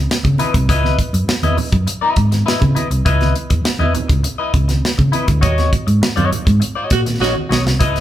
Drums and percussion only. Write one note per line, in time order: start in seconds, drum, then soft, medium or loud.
0.10 snare loud
0.10 muted conga soft
0.23 kick medium
0.23 closed hi-hat soft
0.23 high conga medium
0.38 closed hi-hat medium
0.38 muted conga soft
0.38 high conga medium
0.54 kick loud
0.54 closed hi-hat medium
0.69 kick loud
0.69 closed hi-hat medium
0.69 low conga medium
0.84 snare soft
0.84 high conga medium
0.99 kick medium
0.99 closed hi-hat medium
1.14 closed hi-hat medium
1.29 snare loud
1.29 muted conga soft
1.43 closed hi-hat soft
1.43 high conga medium
1.57 open hi-hat soft
1.57 muted conga soft
1.57 low conga medium
1.73 kick loud
1.73 closed hi-hat medium
1.87 closed hi-hat medium
1.87 muted conga soft
2.16 kick loud
2.16 closed hi-hat medium
2.16 muted conga soft
2.32 snare soft
2.32 closed hi-hat medium
2.32 high conga medium
2.48 snare loud
2.48 muted conga soft
2.61 kick medium
2.61 closed hi-hat soft
2.61 high conga medium
2.76 closed hi-hat medium
2.76 muted conga soft
2.76 high conga medium
2.91 closed hi-hat medium
3.06 kick loud
3.06 closed hi-hat medium
3.06 low conga medium
3.21 snare soft
3.21 closed hi-hat soft
3.21 high conga medium
3.36 closed hi-hat medium
3.50 kick medium
3.50 closed hi-hat medium
3.65 snare loud
3.65 muted conga soft
3.81 high conga medium
3.95 closed hi-hat medium
3.95 muted conga soft
3.95 low conga medium
4.09 kick loud
4.09 closed hi-hat medium
4.24 closed hi-hat medium
4.24 muted conga soft
4.54 kick medium
4.54 closed hi-hat medium
4.54 muted conga soft
4.69 snare soft
4.69 closed hi-hat medium
4.69 high conga medium
4.85 snare medium
4.98 kick loud
4.98 closed hi-hat soft
4.98 high conga medium
5.13 closed hi-hat medium
5.13 high conga medium
5.28 kick loud
5.28 closed hi-hat medium
5.43 kick loud
5.43 closed hi-hat medium
5.43 low conga medium
5.58 snare soft
5.58 closed hi-hat soft
5.58 high conga medium
5.73 kick medium
5.73 closed hi-hat medium
5.73 muted conga soft
5.88 closed hi-hat medium
6.03 snare loud
6.03 muted conga soft
6.17 closed hi-hat soft
6.17 high conga medium
6.32 closed hi-hat medium
6.32 low conga medium
6.47 kick loud
6.47 closed hi-hat medium
6.61 closed hi-hat medium
6.61 muted conga soft
6.90 kick loud
6.90 closed hi-hat medium
7.06 snare soft
7.06 closed hi-hat medium
7.06 high conga medium
7.22 snare medium
7.22 muted conga soft
7.36 high conga medium
7.51 snare medium
7.51 muted conga soft
7.51 high conga medium
7.67 snare medium
7.80 kick loud
7.80 closed hi-hat medium
7.80 low conga medium
7.96 snare soft
7.96 closed hi-hat soft
7.96 high conga medium